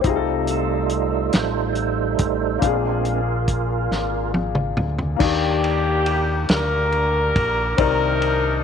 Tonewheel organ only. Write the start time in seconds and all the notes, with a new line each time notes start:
0.06 G3 A3 D#4
0.50 D#4 F4 A4
1.35 D#4 A4 C5
2.63 G#3 C4 D4 F4 A#4